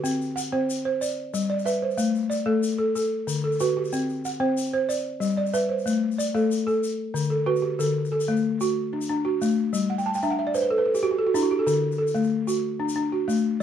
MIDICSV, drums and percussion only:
0, 0, Header, 1, 2, 480
1, 0, Start_track
1, 0, Tempo, 322928
1, 73, Time_signature, 12, 3, 24, 8
1, 20255, End_track
2, 0, Start_track
2, 0, Title_t, "Drums"
2, 75, Note_on_c, 9, 82, 73
2, 224, Note_off_c, 9, 82, 0
2, 319, Note_on_c, 9, 82, 24
2, 467, Note_off_c, 9, 82, 0
2, 558, Note_on_c, 9, 82, 69
2, 707, Note_off_c, 9, 82, 0
2, 1040, Note_on_c, 9, 82, 61
2, 1189, Note_off_c, 9, 82, 0
2, 1516, Note_on_c, 9, 82, 74
2, 1644, Note_off_c, 9, 82, 0
2, 1644, Note_on_c, 9, 82, 23
2, 1792, Note_off_c, 9, 82, 0
2, 1998, Note_on_c, 9, 82, 78
2, 2123, Note_off_c, 9, 82, 0
2, 2123, Note_on_c, 9, 82, 21
2, 2271, Note_off_c, 9, 82, 0
2, 2365, Note_on_c, 9, 82, 21
2, 2476, Note_off_c, 9, 82, 0
2, 2476, Note_on_c, 9, 82, 58
2, 2624, Note_off_c, 9, 82, 0
2, 2836, Note_on_c, 9, 82, 21
2, 2944, Note_off_c, 9, 82, 0
2, 2944, Note_on_c, 9, 82, 71
2, 3093, Note_off_c, 9, 82, 0
2, 3198, Note_on_c, 9, 82, 22
2, 3347, Note_off_c, 9, 82, 0
2, 3438, Note_on_c, 9, 82, 65
2, 3587, Note_off_c, 9, 82, 0
2, 3912, Note_on_c, 9, 82, 59
2, 4039, Note_off_c, 9, 82, 0
2, 4039, Note_on_c, 9, 82, 19
2, 4187, Note_off_c, 9, 82, 0
2, 4398, Note_on_c, 9, 82, 69
2, 4519, Note_off_c, 9, 82, 0
2, 4519, Note_on_c, 9, 82, 18
2, 4668, Note_off_c, 9, 82, 0
2, 4881, Note_on_c, 9, 82, 65
2, 4999, Note_off_c, 9, 82, 0
2, 4999, Note_on_c, 9, 82, 19
2, 5147, Note_off_c, 9, 82, 0
2, 5235, Note_on_c, 9, 82, 18
2, 5350, Note_off_c, 9, 82, 0
2, 5350, Note_on_c, 9, 82, 57
2, 5499, Note_off_c, 9, 82, 0
2, 5717, Note_on_c, 9, 82, 19
2, 5836, Note_off_c, 9, 82, 0
2, 5836, Note_on_c, 9, 82, 61
2, 5985, Note_off_c, 9, 82, 0
2, 6085, Note_on_c, 9, 82, 18
2, 6233, Note_off_c, 9, 82, 0
2, 6320, Note_on_c, 9, 82, 60
2, 6469, Note_off_c, 9, 82, 0
2, 6800, Note_on_c, 9, 82, 55
2, 6929, Note_off_c, 9, 82, 0
2, 6929, Note_on_c, 9, 82, 21
2, 7077, Note_off_c, 9, 82, 0
2, 7285, Note_on_c, 9, 82, 59
2, 7406, Note_off_c, 9, 82, 0
2, 7406, Note_on_c, 9, 82, 19
2, 7554, Note_off_c, 9, 82, 0
2, 7754, Note_on_c, 9, 82, 60
2, 7884, Note_off_c, 9, 82, 0
2, 7884, Note_on_c, 9, 82, 20
2, 8033, Note_off_c, 9, 82, 0
2, 8120, Note_on_c, 9, 82, 19
2, 8236, Note_off_c, 9, 82, 0
2, 8236, Note_on_c, 9, 82, 56
2, 8384, Note_off_c, 9, 82, 0
2, 8599, Note_on_c, 9, 82, 19
2, 8723, Note_off_c, 9, 82, 0
2, 8723, Note_on_c, 9, 82, 61
2, 8872, Note_off_c, 9, 82, 0
2, 9088, Note_on_c, 9, 82, 19
2, 9213, Note_off_c, 9, 82, 0
2, 9213, Note_on_c, 9, 82, 61
2, 9361, Note_off_c, 9, 82, 0
2, 9452, Note_on_c, 9, 82, 19
2, 9600, Note_off_c, 9, 82, 0
2, 9682, Note_on_c, 9, 82, 57
2, 9830, Note_off_c, 9, 82, 0
2, 9925, Note_on_c, 9, 82, 19
2, 10074, Note_off_c, 9, 82, 0
2, 10160, Note_on_c, 9, 82, 68
2, 10308, Note_off_c, 9, 82, 0
2, 10641, Note_on_c, 9, 82, 63
2, 10765, Note_off_c, 9, 82, 0
2, 10765, Note_on_c, 9, 82, 21
2, 10914, Note_off_c, 9, 82, 0
2, 11237, Note_on_c, 9, 82, 20
2, 11386, Note_off_c, 9, 82, 0
2, 11595, Note_on_c, 9, 82, 57
2, 11743, Note_off_c, 9, 82, 0
2, 11966, Note_on_c, 9, 82, 19
2, 12115, Note_off_c, 9, 82, 0
2, 12195, Note_on_c, 9, 82, 46
2, 12315, Note_off_c, 9, 82, 0
2, 12315, Note_on_c, 9, 82, 16
2, 12435, Note_off_c, 9, 82, 0
2, 12435, Note_on_c, 9, 82, 19
2, 12584, Note_off_c, 9, 82, 0
2, 12796, Note_on_c, 9, 82, 54
2, 12945, Note_off_c, 9, 82, 0
2, 13399, Note_on_c, 9, 82, 48
2, 13548, Note_off_c, 9, 82, 0
2, 14000, Note_on_c, 9, 82, 53
2, 14127, Note_off_c, 9, 82, 0
2, 14127, Note_on_c, 9, 82, 19
2, 14275, Note_off_c, 9, 82, 0
2, 14477, Note_on_c, 9, 82, 63
2, 14626, Note_off_c, 9, 82, 0
2, 14846, Note_on_c, 9, 82, 22
2, 14994, Note_off_c, 9, 82, 0
2, 15072, Note_on_c, 9, 82, 43
2, 15198, Note_off_c, 9, 82, 0
2, 15198, Note_on_c, 9, 82, 18
2, 15347, Note_off_c, 9, 82, 0
2, 15676, Note_on_c, 9, 82, 55
2, 15824, Note_off_c, 9, 82, 0
2, 16276, Note_on_c, 9, 82, 44
2, 16424, Note_off_c, 9, 82, 0
2, 16875, Note_on_c, 9, 82, 54
2, 16991, Note_off_c, 9, 82, 0
2, 16991, Note_on_c, 9, 82, 18
2, 17140, Note_off_c, 9, 82, 0
2, 17352, Note_on_c, 9, 82, 56
2, 17500, Note_off_c, 9, 82, 0
2, 17714, Note_on_c, 9, 82, 19
2, 17862, Note_off_c, 9, 82, 0
2, 17945, Note_on_c, 9, 82, 39
2, 18069, Note_off_c, 9, 82, 0
2, 18069, Note_on_c, 9, 82, 18
2, 18186, Note_off_c, 9, 82, 0
2, 18186, Note_on_c, 9, 82, 20
2, 18335, Note_off_c, 9, 82, 0
2, 18552, Note_on_c, 9, 82, 60
2, 18701, Note_off_c, 9, 82, 0
2, 19156, Note_on_c, 9, 82, 47
2, 19304, Note_off_c, 9, 82, 0
2, 19760, Note_on_c, 9, 82, 49
2, 19886, Note_off_c, 9, 82, 0
2, 19886, Note_on_c, 9, 82, 17
2, 20035, Note_off_c, 9, 82, 0
2, 20255, End_track
0, 0, End_of_file